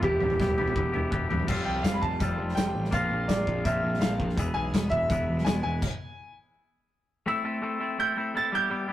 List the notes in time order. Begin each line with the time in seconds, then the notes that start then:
0.01 E1 E3 B3 E4 G4, kick, floor tom
0.20 E1 B3 E4 G4, floor tom, mid tom
0.30 floor tom
0.38 E1 E3 B3 E4 G4, kick, snare, mid tom
0.48 floor tom
0.57 E1 E3 B3 E4 G4, floor tom
0.68 floor tom
0.74 E1 E3 B3 E4 G4, kick, floor tom
0.92 E1 E3 B3 E4 G4, floor tom
1.10 E1 E3 B3 E4 G4, kick
1.29 E1 B3 E4 G4, floor tom, mid tom
1.39 mid tom
1.47 F1 F3 G3 C4 F4 A4, kick, crash
1.65 C2 G5
1.82 F1 F5, kick, snare, closed hi-hat
1.94 B5
2.01 A5, kick
2.19 F1 F3 G3 C4 F4 A4, kick, closed hi-hat
2.38 F1
2.49 snare
2.55 F1 G5, snare, closed hi-hat
2.75 A1
2.85 snare
2.91 A#1 A#3 C4 F4 A#4 F5, kick, closed hi-hat
3.11 A#1
3.28 A#1 D5, kick, snare, closed hi-hat
3.47 A#1, kick
3.64 A#1 A#3 C4 F4 A#4 E5, kick, closed hi-hat
3.83 A#1
3.94 snare
4.01 A#1 F5, snare, closed hi-hat
4.20 A#1, kick
4.29 snare
4.37 E1 E3 G#3 B3 E4 G#4, kick, closed hi-hat
4.54 B1 G#5
4.74 E1, kick, snare, closed hi-hat
4.90 E5, kick
5.09 E1 E3 G#3 B3 E4 G#4, kick, closed hi-hat
5.28 E1
5.38 snare
5.44 E1 G#5, snare, closed hi-hat
5.63 E1 G#5
5.82 kick, crash
7.26 A3 C4 E4 A4 E6
7.44 A3 C4 E4 A4
7.62 A3 C4 E4 A4
7.80 A3 C4 E4 A4
7.98 A3 C4 E4 A4 G6
8.16 A3 C4 E4 A4
8.34 A3 C4 E4 A4 A6
8.52 G3 B3 E4 G4 G6
8.70 G3 B3 E4 G4
8.87 G3 B3 E4 G4